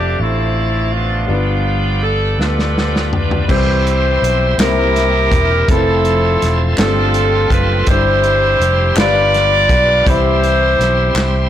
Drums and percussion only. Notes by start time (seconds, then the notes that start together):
2.41 snare
2.59 snare
2.78 snare
2.96 snare
3.13 floor tom
3.31 floor tom
3.49 kick, crash
3.87 closed hi-hat
4.24 closed hi-hat
4.59 snare, clap, closed hi-hat
4.96 snare, closed hi-hat
5.32 kick, closed hi-hat
5.68 kick, closed hi-hat
6.05 closed hi-hat
6.42 snare, closed hi-hat
6.78 snare, clap, closed hi-hat
7.14 closed hi-hat
7.50 kick, closed hi-hat
7.87 kick, closed hi-hat
8.23 closed hi-hat
8.61 closed hi-hat
8.97 snare, clap, closed hi-hat
9.34 snare, closed hi-hat
9.69 kick, closed hi-hat
10.07 kick, closed hi-hat
10.43 closed hi-hat
10.81 snare, closed hi-hat
11.16 snare, clap